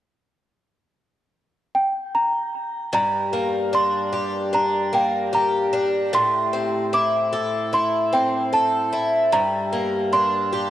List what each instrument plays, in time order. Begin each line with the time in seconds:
1.75 celesta G5
2.15 celesta A#5
2.93 twelve-string acoustic guitar G2, celesta A#5
3.33 twelve-string acoustic guitar A#3
3.73 twelve-string acoustic guitar D4, celesta C6
4.13 twelve-string acoustic guitar G4
4.53 twelve-string acoustic guitar D4, celesta A#5
4.93 twelve-string acoustic guitar A#3, celesta G5
5.33 twelve-string acoustic guitar G4, celesta A#5
5.73 twelve-string acoustic guitar D4
6.13 twelve-string acoustic guitar A2, celesta C6
6.53 twelve-string acoustic guitar C4
6.93 twelve-string acoustic guitar E4, celesta D6
7.33 twelve-string acoustic guitar A4
7.73 twelve-string acoustic guitar E4, celesta C6
8.13 twelve-string acoustic guitar C4, celesta G5
8.53 twelve-string acoustic guitar A4, celesta A5
8.93 twelve-string acoustic guitar E4
9.32 twelve-string acoustic guitar G2, celesta A#5
9.73 twelve-string acoustic guitar A#3
10.13 twelve-string acoustic guitar D4, celesta C6
10.53 twelve-string acoustic guitar G4